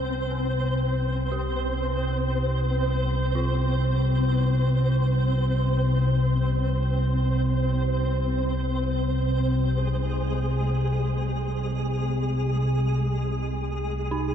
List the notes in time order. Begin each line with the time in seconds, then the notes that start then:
Already playing: C2 C3 C4 C5
1.32 G4
3.35 F4
9.58 G#3 G#4
14.11 D#4